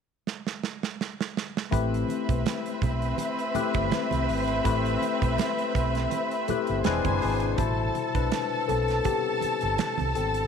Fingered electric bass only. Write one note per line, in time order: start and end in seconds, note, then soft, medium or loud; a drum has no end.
1.73 2.02 A1 loud
2.29 2.43 B1 medium
2.82 3.12 B1 medium
3.56 muted fingered electric bass stroke soft
3.75 3.89 G1 medium
4.13 4.26 C2 medium
4.29 4.59 G#1 medium
4.66 4.95 A1 medium
5.22 5.36 B1 medium
5.76 6.05 B1 medium
6.49 muted fingered electric bass stroke soft
6.69 6.83 G1 medium
6.86 7.02 E1 medium
7.05 7.19 F#1 medium
7.24 7.53 G#1 medium
7.59 7.88 A1 medium
8.16 8.29 B1 medium
8.69 8.99 B1 medium
9.43 muted fingered electric bass stroke soft
9.63 9.76 G1 medium
10.00 10.13 C2 medium
10.17 10.46 G#1 medium